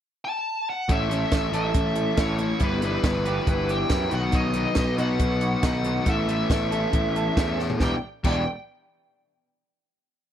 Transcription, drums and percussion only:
0.89 kick loud
0.89 closed hi-hat medium
1.11 closed hi-hat medium
1.32 kick loud
1.32 snare loud
1.32 closed hi-hat medium
1.54 closed hi-hat medium
1.74 kick loud
1.74 closed hi-hat loud
1.96 closed hi-hat medium
2.17 kick loud
2.17 snare loud
2.17 closed hi-hat medium
2.38 closed hi-hat medium
2.60 kick loud
2.60 closed hi-hat medium
2.82 closed hi-hat medium
3.04 kick loud
3.04 snare loud
3.04 closed hi-hat medium
3.26 closed hi-hat medium
3.47 kick loud
3.47 closed hi-hat medium
3.69 closed hi-hat medium
3.90 kick loud
3.90 snare loud
3.90 closed hi-hat medium
4.11 closed hi-hat medium
4.32 kick loud
4.32 closed hi-hat medium
4.54 closed hi-hat medium
4.75 kick loud
4.75 snare loud
4.75 closed hi-hat medium
4.98 closed hi-hat medium
5.20 kick loud
5.20 closed hi-hat loud
5.41 closed hi-hat medium
5.63 kick loud
5.63 snare loud
5.63 closed hi-hat loud
5.84 closed hi-hat medium
6.06 kick loud
6.06 closed hi-hat medium
6.29 closed hi-hat medium
6.50 kick loud
6.50 snare loud
6.50 closed hi-hat medium
6.72 closed hi-hat medium
6.93 kick loud
6.93 closed hi-hat medium
7.16 closed hi-hat medium
7.37 kick loud
7.37 snare loud
7.37 closed hi-hat medium
7.59 snare medium
7.70 floor tom medium
7.80 kick loud
7.80 snare medium
8.24 kick loud
8.24 crash medium

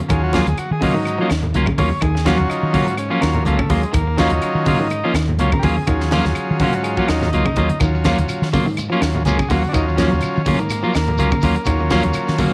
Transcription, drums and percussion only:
0.09 kick medium
0.09 closed hi-hat medium
0.09 low conga medium
0.09 claves medium
0.33 kick medium
0.33 snare medium
0.33 closed hi-hat medium
0.33 high conga medium
0.46 closed hi-hat medium
0.46 high conga medium
0.57 closed hi-hat medium
0.57 claves medium
0.82 kick medium
0.82 open hi-hat medium
0.82 high conga medium
1.05 closed hi-hat medium
1.05 claves medium
1.30 snare medium
1.30 closed hi-hat soft
1.30 claves medium
1.43 low conga medium
1.54 closed hi-hat medium
1.54 high conga medium
1.66 kick medium
1.66 high conga medium
1.66 low conga medium
1.66 claves medium
1.78 kick medium
1.78 open hi-hat medium
1.78 high conga medium
1.90 high conga medium
2.01 kick medium
2.01 closed hi-hat medium
2.01 low conga medium
2.01 claves medium
2.16 snare soft
2.26 kick medium
2.26 snare medium
2.26 closed hi-hat soft
2.26 high conga medium
2.39 high conga medium
2.50 closed hi-hat medium
2.50 claves medium
2.74 kick medium
2.74 open hi-hat medium
2.74 high conga medium
2.88 closed hi-hat soft
2.97 closed hi-hat medium
2.97 claves medium
3.22 snare medium
3.22 closed hi-hat medium
3.22 claves medium
3.35 low conga medium
3.45 closed hi-hat medium
3.45 high conga medium
3.59 kick medium
3.59 high conga medium
3.59 low conga medium
3.59 claves medium
3.69 kick medium
3.69 open hi-hat medium
3.69 high conga medium
3.83 closed hi-hat medium
3.94 kick medium
3.94 closed hi-hat medium
3.94 low conga medium
3.94 claves medium
4.18 kick medium
4.18 snare medium
4.18 closed hi-hat medium
4.18 high conga medium
4.30 closed hi-hat medium
4.30 high conga medium
4.42 closed hi-hat medium
4.42 claves medium
4.66 kick medium
4.66 open hi-hat medium
4.66 high conga medium
4.90 closed hi-hat medium
4.90 claves medium
5.14 snare medium
5.14 closed hi-hat soft
5.14 claves medium
5.29 low conga medium
5.39 closed hi-hat medium
5.39 high conga medium
5.52 kick medium
5.52 high conga medium
5.52 low conga medium
5.52 claves medium
5.63 kick medium
5.63 open hi-hat medium
5.63 high conga medium
5.77 high conga medium
5.87 kick medium
5.87 closed hi-hat medium
5.87 low conga medium
5.87 claves medium
6.00 snare soft
6.11 snare medium
6.11 closed hi-hat soft
6.11 high conga medium
6.25 snare soft
6.25 high conga medium
6.35 closed hi-hat medium
6.35 claves medium
6.59 kick medium
6.59 open hi-hat medium
6.59 high conga medium
6.73 closed hi-hat soft
6.84 closed hi-hat medium
6.84 claves medium
6.97 kick medium
7.08 snare medium
7.08 closed hi-hat soft
7.08 claves medium
7.21 snare soft
7.21 low conga medium
7.33 closed hi-hat medium
7.33 high conga medium
7.46 kick medium
7.46 high conga medium
7.46 claves medium
7.56 kick medium
7.56 closed hi-hat medium
7.56 high conga medium
7.69 closed hi-hat medium
7.69 high conga medium
7.80 kick medium
7.80 closed hi-hat medium
7.80 low conga medium
7.80 claves medium
7.80 shekere medium
7.94 shekere soft
8.04 kick medium
8.04 snare medium
8.04 closed hi-hat medium
8.04 high conga medium
8.04 shekere medium
8.18 closed hi-hat medium
8.18 high conga medium
8.18 shekere soft
8.28 closed hi-hat medium
8.28 claves medium
8.28 shekere medium
8.42 snare soft
8.42 shekere soft
8.53 kick medium
8.53 open hi-hat medium
8.53 high conga medium
8.53 shekere medium
8.68 shekere soft
8.77 closed hi-hat medium
8.77 claves medium
8.77 shekere medium
8.92 shekere soft
9.02 snare medium
9.02 closed hi-hat medium
9.02 claves medium
9.02 shekere medium
9.15 low conga medium
9.15 shekere soft
9.25 closed hi-hat medium
9.25 high conga medium
9.25 shekere medium
9.39 kick medium
9.39 high conga medium
9.39 claves medium
9.39 shekere soft
9.50 kick medium
9.50 open hi-hat medium
9.50 high conga medium
9.50 shekere medium
9.64 high conga medium
9.64 shekere soft
9.74 kick medium
9.74 closed hi-hat medium
9.74 low conga medium
9.74 claves medium
9.74 shekere medium
9.88 shekere soft
9.98 kick medium
9.98 snare medium
9.98 closed hi-hat soft
9.98 high conga medium
9.98 shekere medium
10.12 high conga medium
10.12 shekere soft
10.21 closed hi-hat medium
10.21 claves medium
10.21 shekere medium
10.36 shekere soft
10.45 kick medium
10.45 open hi-hat medium
10.45 high conga medium
10.45 shekere medium
10.59 closed hi-hat soft
10.59 shekere soft
10.70 closed hi-hat medium
10.70 claves medium
10.70 shekere medium
10.83 shekere soft
10.94 snare medium
10.94 closed hi-hat soft
10.94 claves medium
10.94 shekere medium
11.07 low conga medium
11.07 shekere soft
11.18 closed hi-hat medium
11.18 high conga medium
11.18 shekere medium
11.30 kick medium
11.30 high conga medium
11.30 claves medium
11.30 shekere soft
11.41 kick medium
11.41 open hi-hat medium
11.41 high conga medium
11.41 shekere medium
11.55 closed hi-hat medium
11.55 shekere soft
11.65 kick medium
11.65 closed hi-hat medium
11.65 low conga medium
11.65 claves medium
11.65 shekere medium
11.79 shekere soft
11.90 kick medium
11.90 snare medium
11.90 closed hi-hat soft
11.90 high conga medium
11.90 shekere medium
12.02 closed hi-hat medium
12.02 high conga medium
12.02 shekere soft
12.13 closed hi-hat medium
12.13 claves medium
12.13 shekere medium
12.27 snare soft
12.27 shekere soft
12.38 kick medium
12.38 open hi-hat medium
12.38 high conga medium
12.38 shekere medium

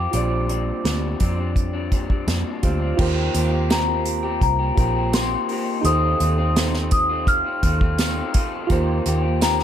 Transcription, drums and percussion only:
0.13 closed hi-hat medium
0.49 closed hi-hat medium
0.85 snare loud
0.85 closed hi-hat medium
1.20 kick medium
1.20 closed hi-hat medium
1.56 kick medium
1.56 closed hi-hat medium
1.92 kick medium
1.92 closed hi-hat medium
2.10 kick medium
2.28 snare loud
2.28 closed hi-hat medium
2.63 kick medium
2.63 closed hi-hat medium
2.99 kick loud
2.99 crash loud
3.35 closed hi-hat medium
3.70 snare loud
3.70 closed hi-hat medium
3.70 tambourine medium
4.05 closed hi-hat medium
4.41 kick medium
4.41 closed hi-hat medium
4.77 kick medium
4.77 closed hi-hat medium
5.13 snare loud
5.13 closed hi-hat medium
5.13 tambourine loud
5.49 open hi-hat medium
5.85 closed hi-hat medium
6.20 closed hi-hat medium
6.56 snare loud
6.56 closed hi-hat medium
6.56 tambourine medium
6.73 snare soft
6.91 kick medium
6.91 closed hi-hat medium
7.27 kick medium
7.27 closed hi-hat medium
7.63 kick medium
7.63 closed hi-hat medium
7.81 kick medium
7.98 snare loud
7.98 closed hi-hat medium
7.98 tambourine medium
8.34 kick medium
8.34 closed hi-hat medium
8.70 kick medium
8.70 closed hi-hat medium
9.06 closed hi-hat medium
9.41 snare loud
9.41 closed hi-hat medium
9.41 tambourine medium
9.59 snare soft

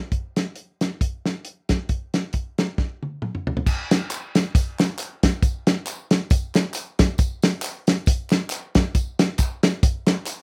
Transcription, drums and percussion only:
0.12 kick medium
0.12 closed hi-hat medium
0.36 snare medium
0.36 closed hi-hat medium
0.56 closed hi-hat medium
0.81 snare medium
0.81 closed hi-hat medium
1.01 kick loud
1.01 closed hi-hat medium
1.26 snare medium
1.26 closed hi-hat medium
1.45 closed hi-hat medium
1.69 kick medium
1.69 snare loud
1.69 closed hi-hat medium
1.89 kick medium
1.89 closed hi-hat medium
2.14 snare medium
2.14 closed hi-hat medium
2.33 kick medium
2.33 closed hi-hat medium
2.58 snare loud
2.58 closed hi-hat medium
2.78 kick loud
2.78 snare soft
3.03 high tom soft
3.22 mid tom medium
3.35 mid tom medium
3.47 floor tom medium
3.57 floor tom medium
3.66 kick medium
3.66 crash medium
3.66 tambourine medium
3.91 snare loud
3.91 closed hi-hat medium
3.91 tambourine medium
4.10 clap loud
4.10 closed hi-hat medium
4.10 tambourine loud
4.35 snare loud
4.35 closed hi-hat medium
4.35 tambourine medium
4.55 kick loud
4.55 closed hi-hat loud
4.55 tambourine medium
4.80 snare loud
4.80 clap medium
4.80 closed hi-hat medium
4.80 tambourine medium
4.99 clap loud
4.99 closed hi-hat medium
4.99 tambourine medium
5.23 kick loud
5.23 snare loud
5.23 closed hi-hat medium
5.23 tambourine medium
5.42 kick loud
5.42 closed hi-hat medium
5.42 tambourine medium
5.67 snare loud
5.67 closed hi-hat medium
5.67 tambourine medium
5.86 clap loud
5.86 closed hi-hat medium
5.86 tambourine loud
6.11 snare loud
6.11 closed hi-hat medium
6.11 tambourine medium
6.30 kick loud
6.30 closed hi-hat loud
6.30 tambourine medium
6.55 snare loud
6.55 clap medium
6.55 closed hi-hat medium
6.55 tambourine medium
6.74 clap medium
6.74 closed hi-hat medium
6.74 tambourine medium
6.99 kick loud
6.99 snare loud
6.99 closed hi-hat medium
6.99 tambourine medium
7.18 kick loud
7.18 closed hi-hat medium
7.18 tambourine medium
7.42 snare loud
7.42 closed hi-hat medium
7.42 tambourine medium
7.62 clap loud
7.62 closed hi-hat medium
7.62 tambourine loud
7.87 snare loud
7.87 closed hi-hat medium
7.87 tambourine medium
8.06 kick loud
8.06 closed hi-hat loud
8.06 tambourine medium
8.30 snare loud
8.30 clap medium
8.30 closed hi-hat medium
8.30 tambourine medium
8.50 clap loud
8.50 closed hi-hat loud
8.50 tambourine medium
8.75 kick loud
8.75 snare loud
8.75 closed hi-hat medium
8.75 tambourine soft
8.95 kick loud
8.95 closed hi-hat medium
8.95 tambourine medium
9.19 snare loud
9.19 closed hi-hat medium
9.19 tambourine medium
9.38 kick loud
9.38 clap loud
9.38 closed hi-hat medium
9.38 tambourine loud
9.63 snare loud
9.63 closed hi-hat medium
9.63 tambourine medium
9.83 kick loud
9.83 closed hi-hat loud
9.83 tambourine medium
10.07 snare loud
10.07 clap medium
10.07 closed hi-hat medium
10.07 tambourine medium
10.26 clap medium
10.26 closed hi-hat loud
10.26 tambourine medium

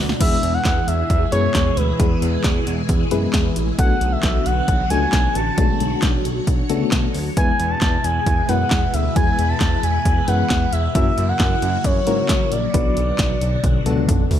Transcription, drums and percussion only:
0.09 snare medium
0.21 kick loud
0.21 closed hi-hat medium
0.21 crash loud
0.43 closed hi-hat medium
0.65 kick loud
0.65 snare loud
0.65 clap medium
0.65 closed hi-hat medium
0.88 closed hi-hat medium
1.10 kick loud
1.10 closed hi-hat medium
1.32 closed hi-hat medium
1.55 kick loud
1.55 snare loud
1.55 clap medium
1.55 closed hi-hat medium
1.77 closed hi-hat medium
2.00 kick loud
2.00 closed hi-hat medium
2.22 closed hi-hat medium
2.44 kick loud
2.44 snare loud
2.44 clap medium
2.44 closed hi-hat medium
2.67 closed hi-hat medium
2.89 kick loud
2.89 closed hi-hat medium
3.11 closed hi-hat medium
3.34 kick loud
3.34 snare loud
3.34 clap loud
3.34 closed hi-hat medium
3.56 closed hi-hat medium
3.79 kick loud
3.79 closed hi-hat medium
4.01 closed hi-hat medium
4.23 kick loud
4.23 snare loud
4.23 clap medium
4.23 closed hi-hat medium
4.46 closed hi-hat medium
4.68 kick loud
4.68 closed hi-hat medium
4.90 closed hi-hat medium
5.13 kick loud
5.13 snare loud
5.13 clap loud
5.13 closed hi-hat medium
5.35 closed hi-hat medium
5.58 kick loud
5.58 closed hi-hat medium
5.80 closed hi-hat medium
6.02 kick loud
6.02 snare loud
6.02 clap medium
6.02 closed hi-hat medium
6.25 closed hi-hat medium
6.47 kick loud
6.47 closed hi-hat medium
6.70 closed hi-hat medium
6.92 kick loud
6.92 snare loud
6.92 clap loud
6.92 closed hi-hat medium
7.14 open hi-hat medium
7.37 kick loud
7.37 closed hi-hat medium
7.60 closed hi-hat medium
7.82 kick loud
7.82 snare loud
7.82 clap medium
7.82 closed hi-hat medium
8.04 closed hi-hat medium
8.26 kick loud
8.26 closed hi-hat medium
8.49 closed hi-hat medium
8.71 kick loud
8.71 snare loud
8.71 clap loud
8.71 closed hi-hat medium
8.94 closed hi-hat medium
9.16 kick loud
9.16 closed hi-hat medium
9.39 closed hi-hat medium
9.61 kick loud
9.61 snare loud
9.61 clap medium
9.61 closed hi-hat medium
9.83 closed hi-hat medium
10.05 kick loud
10.05 closed hi-hat medium
10.28 closed hi-hat medium
10.50 kick loud
10.50 snare loud
10.50 clap loud
10.50 closed hi-hat medium
10.73 closed hi-hat medium
10.95 kick loud
10.95 closed hi-hat medium
11.18 closed hi-hat medium
11.40 kick loud
11.40 snare loud
11.40 clap medium
11.40 closed hi-hat medium
11.62 closed hi-hat medium
11.84 kick loud
11.84 closed hi-hat medium
12.07 closed hi-hat medium
12.29 kick loud
12.29 snare loud
12.29 clap loud
12.29 closed hi-hat medium
12.52 closed hi-hat medium
12.74 kick loud
12.74 closed hi-hat medium
12.97 closed hi-hat medium
13.19 kick loud
13.19 snare loud
13.19 clap medium
13.19 closed hi-hat medium
13.41 closed hi-hat medium
13.64 kick loud
13.64 closed hi-hat medium
13.64 high tom medium
13.86 closed hi-hat medium
13.86 mid tom medium
13.97 mid tom medium
14.09 kick loud
14.09 closed hi-hat medium
14.09 mid tom medium
14.31 floor tom loud
14.31 open hi-hat medium

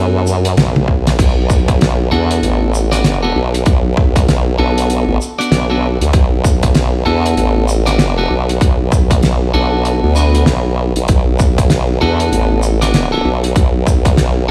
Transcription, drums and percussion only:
0.27 shaker medium
0.45 closed hi-hat medium
0.57 snare loud
0.57 closed hi-hat medium
0.57 high tom medium
0.76 high tom medium
0.88 kick medium
1.07 snare medium
1.07 closed hi-hat medium
1.19 kick loud
1.19 closed hi-hat medium
1.19 crash medium
1.50 kick loud
1.50 shaker medium
1.68 kick loud
1.68 closed hi-hat medium
1.81 snare loud
1.81 closed hi-hat medium
2.12 cross-stick soft
2.31 closed hi-hat medium
2.43 closed hi-hat medium
2.74 shaker medium
2.92 snare soft
2.92 closed hi-hat medium
3.04 snare loud
3.04 closed hi-hat medium
3.54 cross-stick soft
3.54 closed hi-hat medium
3.66 kick loud
3.66 closed hi-hat medium
3.97 kick loud
4.16 kick loud
4.16 closed hi-hat medium
4.28 snare loud
4.28 closed hi-hat medium
4.78 closed hi-hat medium
4.90 closed hi-hat medium
5.21 shaker medium
5.41 closed hi-hat medium
5.52 snare loud
5.52 closed hi-hat medium
6.01 closed hi-hat medium
6.13 kick loud
6.13 closed hi-hat medium
6.44 kick loud
6.44 shaker medium
6.63 kick loud
6.63 closed hi-hat medium
6.75 snare loud
6.75 closed hi-hat medium
7.07 cross-stick soft
7.26 closed hi-hat medium
7.37 closed hi-hat medium
7.68 shaker medium
7.87 snare soft
7.87 closed hi-hat medium
7.99 snare loud
7.99 closed hi-hat medium
8.49 cross-stick soft
8.49 closed hi-hat medium
8.61 kick loud
8.61 closed hi-hat medium
8.92 kick loud
8.92 shaker medium
9.11 kick loud
9.11 closed hi-hat medium
9.23 snare loud
9.23 closed hi-hat medium
9.85 closed hi-hat medium
10.16 shaker medium
10.35 closed hi-hat medium
10.46 snare loud
10.46 closed hi-hat medium
10.96 closed hi-hat medium
11.08 kick loud
11.08 closed hi-hat medium
11.39 kick loud
11.39 shaker medium
11.58 kick loud
11.58 closed hi-hat medium
11.70 snare loud
11.70 closed hi-hat medium
12.02 cross-stick soft
12.20 closed hi-hat medium
12.33 closed hi-hat medium
12.63 shaker medium
12.82 snare soft
12.82 closed hi-hat medium
12.94 snare loud
12.94 closed hi-hat medium
13.44 cross-stick soft
13.44 closed hi-hat medium
13.56 kick loud
13.56 closed hi-hat medium
13.87 kick loud
13.87 shaker medium
14.05 kick loud
14.05 closed hi-hat medium
14.17 snare loud
14.17 closed hi-hat medium

